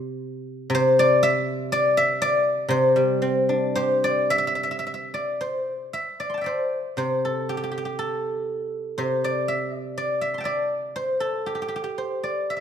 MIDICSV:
0, 0, Header, 1, 2, 480
1, 0, Start_track
1, 0, Tempo, 993377
1, 348, Time_signature, 2, 2, 24, 8
1, 1306, Tempo, 1071429
1, 3226, Tempo, 996678
1, 5146, Tempo, 1025641
1, 5908, End_track
2, 0, Start_track
2, 0, Title_t, "Guzheng"
2, 0, Program_c, 0, 107
2, 0, Note_on_c, 0, 48, 63
2, 0, Note_on_c, 0, 72, 89
2, 0, Note_on_c, 0, 74, 85
2, 0, Note_on_c, 0, 76, 97
2, 202, Note_off_c, 0, 76, 0
2, 331, Note_off_c, 0, 48, 0
2, 337, Note_on_c, 0, 48, 73
2, 359, Note_off_c, 0, 72, 0
2, 361, Note_on_c, 0, 72, 107
2, 390, Note_off_c, 0, 74, 0
2, 479, Note_on_c, 0, 74, 114
2, 593, Note_on_c, 0, 76, 123
2, 830, Note_off_c, 0, 74, 0
2, 832, Note_on_c, 0, 74, 114
2, 951, Note_off_c, 0, 76, 0
2, 953, Note_on_c, 0, 76, 116
2, 1069, Note_off_c, 0, 74, 0
2, 1071, Note_on_c, 0, 74, 113
2, 1292, Note_off_c, 0, 48, 0
2, 1297, Note_on_c, 0, 48, 77
2, 1305, Note_off_c, 0, 72, 0
2, 1306, Note_on_c, 0, 72, 98
2, 1421, Note_on_c, 0, 55, 60
2, 1537, Note_on_c, 0, 60, 61
2, 1659, Note_on_c, 0, 62, 52
2, 1749, Note_off_c, 0, 76, 0
2, 1775, Note_off_c, 0, 72, 0
2, 1777, Note_on_c, 0, 72, 99
2, 1782, Note_on_c, 0, 67, 58
2, 1903, Note_off_c, 0, 74, 0
2, 1905, Note_on_c, 0, 74, 97
2, 2023, Note_on_c, 0, 76, 114
2, 2057, Note_off_c, 0, 76, 0
2, 2058, Note_on_c, 0, 76, 73
2, 2096, Note_off_c, 0, 76, 0
2, 2098, Note_on_c, 0, 76, 77
2, 2133, Note_off_c, 0, 76, 0
2, 2134, Note_on_c, 0, 76, 65
2, 2169, Note_off_c, 0, 76, 0
2, 2171, Note_on_c, 0, 76, 65
2, 2203, Note_off_c, 0, 76, 0
2, 2205, Note_on_c, 0, 76, 57
2, 2239, Note_off_c, 0, 76, 0
2, 2240, Note_on_c, 0, 76, 66
2, 2273, Note_off_c, 0, 76, 0
2, 2275, Note_on_c, 0, 76, 51
2, 2306, Note_off_c, 0, 76, 0
2, 2307, Note_on_c, 0, 76, 50
2, 2395, Note_off_c, 0, 55, 0
2, 2395, Note_off_c, 0, 74, 0
2, 2397, Note_on_c, 0, 74, 59
2, 2516, Note_off_c, 0, 60, 0
2, 2516, Note_off_c, 0, 72, 0
2, 2517, Note_on_c, 0, 72, 63
2, 2637, Note_off_c, 0, 62, 0
2, 2751, Note_off_c, 0, 48, 0
2, 2752, Note_off_c, 0, 76, 0
2, 2753, Note_on_c, 0, 76, 68
2, 2756, Note_off_c, 0, 67, 0
2, 2870, Note_off_c, 0, 74, 0
2, 2872, Note_on_c, 0, 74, 64
2, 2916, Note_on_c, 0, 84, 30
2, 2935, Note_on_c, 0, 81, 32
2, 2951, Note_on_c, 0, 79, 37
2, 2967, Note_off_c, 0, 76, 0
2, 2968, Note_on_c, 0, 76, 42
2, 2978, Note_off_c, 0, 74, 0
2, 2980, Note_on_c, 0, 74, 47
2, 2988, Note_off_c, 0, 72, 0
2, 2990, Note_on_c, 0, 72, 62
2, 3217, Note_on_c, 0, 48, 49
2, 3219, Note_off_c, 0, 72, 0
2, 3221, Note_on_c, 0, 72, 70
2, 3351, Note_on_c, 0, 69, 59
2, 3468, Note_on_c, 0, 67, 64
2, 3505, Note_off_c, 0, 67, 0
2, 3507, Note_on_c, 0, 67, 49
2, 3521, Note_off_c, 0, 84, 0
2, 3535, Note_off_c, 0, 67, 0
2, 3537, Note_on_c, 0, 67, 52
2, 3574, Note_off_c, 0, 67, 0
2, 3576, Note_on_c, 0, 67, 48
2, 3603, Note_off_c, 0, 67, 0
2, 3605, Note_on_c, 0, 67, 50
2, 3609, Note_off_c, 0, 81, 0
2, 3640, Note_off_c, 0, 67, 0
2, 3642, Note_on_c, 0, 67, 47
2, 3678, Note_off_c, 0, 79, 0
2, 3705, Note_off_c, 0, 69, 0
2, 3707, Note_on_c, 0, 69, 69
2, 3777, Note_off_c, 0, 76, 0
2, 3850, Note_off_c, 0, 74, 0
2, 4174, Note_off_c, 0, 72, 0
2, 4181, Note_off_c, 0, 48, 0
2, 4184, Note_on_c, 0, 72, 78
2, 4187, Note_on_c, 0, 48, 54
2, 4312, Note_on_c, 0, 74, 77
2, 4427, Note_on_c, 0, 76, 76
2, 4567, Note_off_c, 0, 74, 0
2, 4567, Note_off_c, 0, 76, 0
2, 4567, Note_on_c, 0, 74, 76
2, 4664, Note_off_c, 0, 74, 0
2, 4664, Note_on_c, 0, 74, 74
2, 4763, Note_off_c, 0, 69, 0
2, 4774, Note_off_c, 0, 67, 0
2, 4779, Note_on_c, 0, 76, 66
2, 4841, Note_on_c, 0, 84, 32
2, 4859, Note_on_c, 0, 81, 37
2, 4871, Note_on_c, 0, 79, 42
2, 4886, Note_off_c, 0, 76, 0
2, 4888, Note_on_c, 0, 76, 41
2, 4892, Note_off_c, 0, 74, 0
2, 4894, Note_on_c, 0, 74, 71
2, 5135, Note_off_c, 0, 72, 0
2, 5137, Note_on_c, 0, 72, 68
2, 5253, Note_on_c, 0, 69, 61
2, 5374, Note_on_c, 0, 67, 60
2, 5413, Note_off_c, 0, 67, 0
2, 5414, Note_on_c, 0, 67, 45
2, 5445, Note_off_c, 0, 67, 0
2, 5447, Note_on_c, 0, 67, 49
2, 5460, Note_off_c, 0, 84, 0
2, 5476, Note_off_c, 0, 67, 0
2, 5478, Note_on_c, 0, 67, 44
2, 5510, Note_off_c, 0, 67, 0
2, 5512, Note_on_c, 0, 67, 50
2, 5544, Note_off_c, 0, 81, 0
2, 5547, Note_off_c, 0, 67, 0
2, 5549, Note_on_c, 0, 67, 47
2, 5605, Note_off_c, 0, 79, 0
2, 5614, Note_off_c, 0, 72, 0
2, 5616, Note_on_c, 0, 72, 57
2, 5621, Note_off_c, 0, 48, 0
2, 5699, Note_off_c, 0, 76, 0
2, 5734, Note_off_c, 0, 74, 0
2, 5735, Note_on_c, 0, 74, 60
2, 5860, Note_on_c, 0, 76, 60
2, 5888, Note_off_c, 0, 76, 0
2, 5890, Note_on_c, 0, 76, 43
2, 5908, Note_off_c, 0, 67, 0
2, 5908, Note_off_c, 0, 69, 0
2, 5908, Note_off_c, 0, 72, 0
2, 5908, Note_off_c, 0, 74, 0
2, 5908, Note_off_c, 0, 76, 0
2, 5908, End_track
0, 0, End_of_file